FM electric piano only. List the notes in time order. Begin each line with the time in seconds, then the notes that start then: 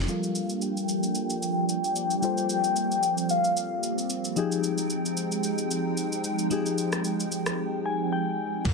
0.08 G3 F4 A4 A#4
2.22 G3 F4 A4 C5
4.36 F3 D#4 G4 G#4
6.50 F3 D#4 G4 G#4
7.86 G#5
8.12 G5
8.65 G3 F4 A4 A#4